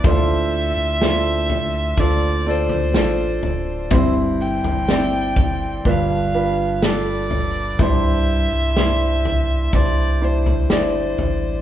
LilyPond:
<<
  \new Staff \with { instrumentName = "Violin" } { \time 4/4 \key c \major \tempo 4 = 62 e''2 d''8 c''4. | c''8 g''4. f''4 d''4 | e''2 d''8 c''8 c''4 | }
  \new Staff \with { instrumentName = "Grand piano" } { \time 4/4 \key c \major <d' f' a' c''>4 <d' f' a' c''>4 <d' f' a' c''>8 <d' f' a' d''>8 <d' f' a' d''>4 | <c' e' g' c''>4 <c' e' g' d''>4 <d' f' g' b'>8 <d' f' g' b'>8 <d' f' g' a'>4 | <d' e' g' c''>4 <d' e' g' c''>4 <d' e' g' c''>8 <d' e' g' c''>8 <d' e' g' d''>4 | }
  \new Staff \with { instrumentName = "Grand piano" } { \clef bass \time 4/4 \key c \major a,4. r2 r8 | <g, g>4. r8 <g, d>4. r8 | g,4. r2 r8 | }
  \new Staff \with { instrumentName = "Sub bass" } { \clef bass \time 4/4 \key c \major d,8. d,4~ d,16 d,4 a,,8 d,,8 | g,,8. g,,4~ g,,16 g,,2 | c,8. c,4~ c,16 c,4 g,,8 a,,8 | }
  \new DrumStaff \with { instrumentName = "Drums" } \drummode { \time 4/4 <bd tomfh>4 sn8 tomfh8 <bd tomfh>8. tomfh16 sn8 tomfh8 | <bd tomfh>8. tomfh16 sn8 <bd tomfh>8 <bd tomfh>4 sn8 tomfh8 | <bd tomfh>4 sn8 tomfh8 <bd tomfh>8. tomfh16 sn8 tomfh8 | }
>>